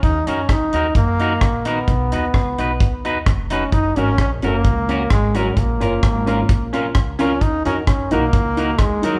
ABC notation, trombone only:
X:1
M:4/4
L:1/8
Q:1/4=130
K:D#m
V:1 name="Trombone"
D C D2 A,3 B,- | B,6 z C | D C C A,3 G, F, | A,6 z C |
D C C A,3 G, F, |]